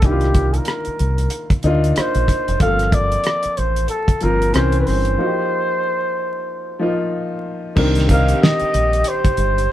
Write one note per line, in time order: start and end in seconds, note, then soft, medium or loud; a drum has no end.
0.00 0.58 C2 medium
0.00 0.03 D#3 medium
0.00 1.19 D#3 medium
0.00 0.03 A#3 medium
0.00 1.19 A#3 medium
0.00 0.04 D4 medium
0.00 0.11 F4 medium
0.00 kick loud
0.00 closed hi-hat medium
0.04 1.20 D4 medium
0.04 0.12 E4 medium
0.04 0.58 G4 medium
0.11 1.23 F4 medium
0.21 cross-stick soft
0.21 closed hi-hat soft
0.34 kick medium
0.34 closed hi-hat medium
0.54 1.56 A#4 medium
0.54 closed hi-hat soft
0.65 cross-stick medium
0.65 closed hi-hat medium
0.85 muted fingered electric bass stroke soft
0.85 closed hi-hat soft
0.99 1.27 C2 medium
0.99 closed hi-hat soft
1.18 closed hi-hat soft
1.30 closed hi-hat medium
1.50 muted fingered electric bass stroke soft
1.50 kick medium
1.50 closed hi-hat soft
1.63 1.91 D2 medium
1.63 2.52 A#3 medium
1.63 2.52 D4 medium
1.63 2.51 D#4 medium
1.63 2.52 F4 medium
1.63 closed hi-hat soft
1.84 closed hi-hat soft
1.96 2.57 C5 loud
1.96 muted fingered electric bass stroke soft
1.96 cross-stick loud
1.96 closed hi-hat medium
2.15 2.26 A#1 medium
2.15 closed hi-hat soft
2.28 kick medium
2.28 cross-stick soft
2.28 closed hi-hat medium
2.48 2.59 F1 medium
2.48 closed hi-hat soft
2.60 3.16 G1 medium
2.60 3.77 F3 medium
2.60 2.68 A3 soft
2.60 3.77 C4 medium
2.60 3.78 A4 medium
2.60 2.95 F5 loud
2.60 kick loud
2.60 closed hi-hat medium
2.68 3.80 A#3 medium
2.79 cross-stick soft
2.79 closed hi-hat soft
2.92 3.59 D5 medium
2.92 kick medium
2.92 closed hi-hat medium
3.12 closed hi-hat soft
3.24 cross-stick medium
3.24 closed hi-hat medium
3.43 muted fingered electric bass stroke soft
3.43 closed hi-hat soft
3.57 3.85 A1 medium
3.57 3.89 C5 medium
3.57 closed hi-hat soft
3.76 closed hi-hat soft
3.88 4.25 A4 medium
3.88 closed hi-hat medium
4.08 muted fingered electric bass stroke soft
4.08 kick medium
4.08 closed hi-hat soft
4.21 4.50 G1 medium
4.21 4.53 F3 medium
4.21 4.54 A#3 medium
4.21 4.52 C4 medium
4.21 4.55 F4 medium
4.21 4.56 A#4 medium
4.21 closed hi-hat soft
4.42 closed hi-hat soft
4.53 4.82 C2 medium
4.53 5.11 E3 medium
4.53 5.12 C4 medium
4.53 5.12 C#4 medium
4.53 5.13 A#4 medium
4.53 4.80 C5 medium
4.53 cross-stick loud
4.53 closed hi-hat medium
4.72 closed hi-hat soft
4.80 4.88 B4 medium
4.86 5.15 G1 medium
4.86 7.12 C5 loud
4.86 cross-stick soft
4.86 open hi-hat soft
5.05 closed hi-hat soft
5.18 6.34 F3 medium
5.18 6.35 A#3 medium
5.18 6.35 D#4 medium
5.18 5.27 F#4 medium
5.27 6.39 G4 medium
6.79 7.67 F3 medium
6.79 7.67 A#3 medium
6.79 7.68 D#4 medium
6.79 7.68 F4 medium
7.76 8.32 C2 loud
7.76 8.05 D#3 medium
7.76 9.72 G3 medium
7.76 8.06 C4 medium
7.76 8.06 D4 medium
7.76 9.72 D#4 medium
7.76 9.72 G4 medium
7.76 8.06 A#4 medium
7.76 kick loud
7.76 crash medium
7.95 snare soft
7.95 closed hi-hat soft
8.08 9.25 D#3 medium
8.08 9.25 C4 medium
8.08 9.26 D#4 medium
8.08 9.26 A#4 medium
8.08 8.40 F5 loud
8.08 kick medium
8.08 closed hi-hat medium
8.28 closed hi-hat medium
8.43 9.10 D#5 loud
8.43 snare loud
8.60 muted fingered electric bass stroke soft
8.60 closed hi-hat soft
8.74 9.01 A#1 medium
8.74 closed hi-hat medium
8.93 closed hi-hat soft
9.04 closed hi-hat medium
9.08 9.72 C5 loud
9.25 muted fingered electric bass stroke soft
9.25 kick medium
9.25 closed hi-hat soft
9.37 9.65 G1 medium
9.37 closed hi-hat medium
9.58 closed hi-hat medium